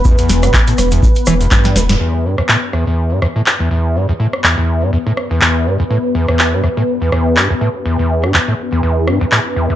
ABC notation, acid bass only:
X:1
M:4/4
L:1/16
Q:"Swing 16ths" 1/4=123
K:Em
V:1 name="Acid bass" clef=bass
E,, E,,2 G,, E,, A,, z E,, z2 E, E,, G,,2 D,, G,, | E,,2 G,, E,, A,, z E,, E,,2 G,, E,, A,, z E,, E,,2 | G,, E,, A,, z E,, E,,2 G,, E,, A,, z E,, E,,2 G,, E,, | A,, z E,, E,,2 G,, E,, A,, z E,, E,,2 G,, E,, A,, z |
E,, E,,2 G,, E,, A,, z E,, E,,2 G,, E,, A,, z E,, E,, |]